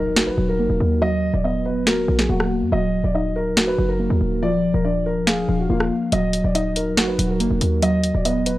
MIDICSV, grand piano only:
0, 0, Header, 1, 2, 480
1, 0, Start_track
1, 0, Key_signature, -6, "minor"
1, 0, Tempo, 425532
1, 1147, Time_signature, 4, 2, 24, 8
1, 9683, End_track
2, 0, Start_track
2, 0, Title_t, "Grand piano"
2, 0, Program_c, 0, 0
2, 0, Note_on_c, 0, 70, 81
2, 286, Note_off_c, 0, 70, 0
2, 302, Note_on_c, 0, 71, 76
2, 530, Note_off_c, 0, 71, 0
2, 550, Note_on_c, 0, 70, 72
2, 1112, Note_off_c, 0, 70, 0
2, 1148, Note_on_c, 0, 75, 106
2, 1486, Note_off_c, 0, 75, 0
2, 1509, Note_on_c, 0, 74, 77
2, 1621, Note_off_c, 0, 74, 0
2, 1628, Note_on_c, 0, 75, 84
2, 1854, Note_off_c, 0, 75, 0
2, 1868, Note_on_c, 0, 71, 74
2, 2093, Note_off_c, 0, 71, 0
2, 2110, Note_on_c, 0, 70, 92
2, 2447, Note_off_c, 0, 70, 0
2, 2467, Note_on_c, 0, 68, 71
2, 2580, Note_off_c, 0, 68, 0
2, 2590, Note_on_c, 0, 66, 81
2, 2814, Note_off_c, 0, 66, 0
2, 3071, Note_on_c, 0, 75, 96
2, 3408, Note_off_c, 0, 75, 0
2, 3430, Note_on_c, 0, 74, 75
2, 3542, Note_off_c, 0, 74, 0
2, 3549, Note_on_c, 0, 75, 83
2, 3774, Note_off_c, 0, 75, 0
2, 3789, Note_on_c, 0, 70, 80
2, 4126, Note_off_c, 0, 70, 0
2, 4144, Note_on_c, 0, 71, 88
2, 4371, Note_off_c, 0, 71, 0
2, 4385, Note_on_c, 0, 70, 77
2, 4950, Note_off_c, 0, 70, 0
2, 4992, Note_on_c, 0, 74, 101
2, 5328, Note_off_c, 0, 74, 0
2, 5346, Note_on_c, 0, 70, 75
2, 5459, Note_off_c, 0, 70, 0
2, 5465, Note_on_c, 0, 74, 82
2, 5692, Note_off_c, 0, 74, 0
2, 5708, Note_on_c, 0, 70, 80
2, 5933, Note_off_c, 0, 70, 0
2, 5948, Note_on_c, 0, 68, 89
2, 6286, Note_off_c, 0, 68, 0
2, 6309, Note_on_c, 0, 66, 64
2, 6421, Note_off_c, 0, 66, 0
2, 6428, Note_on_c, 0, 65, 83
2, 6653, Note_off_c, 0, 65, 0
2, 6910, Note_on_c, 0, 75, 101
2, 7247, Note_off_c, 0, 75, 0
2, 7266, Note_on_c, 0, 74, 78
2, 7379, Note_off_c, 0, 74, 0
2, 7388, Note_on_c, 0, 75, 87
2, 7613, Note_off_c, 0, 75, 0
2, 7631, Note_on_c, 0, 70, 82
2, 7967, Note_off_c, 0, 70, 0
2, 7983, Note_on_c, 0, 71, 73
2, 8210, Note_off_c, 0, 71, 0
2, 8231, Note_on_c, 0, 70, 71
2, 8793, Note_off_c, 0, 70, 0
2, 8828, Note_on_c, 0, 75, 102
2, 9166, Note_off_c, 0, 75, 0
2, 9188, Note_on_c, 0, 74, 75
2, 9300, Note_off_c, 0, 74, 0
2, 9308, Note_on_c, 0, 75, 82
2, 9533, Note_off_c, 0, 75, 0
2, 9546, Note_on_c, 0, 71, 76
2, 9683, Note_off_c, 0, 71, 0
2, 9683, End_track
0, 0, End_of_file